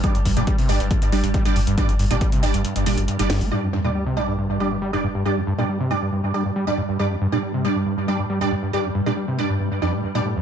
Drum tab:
HH |xxoxxooxxxoxxxox|xxoxxxoxxxoxxxoo|----------------|----------------|
SD |----------------|--------------o-|----------------|----------------|
BD |o-o-o---o---o---|o---o-----------|----------------|----------------|

HH |----------------|----------------|
SD |----------------|----------------|
BD |----------------|----------------|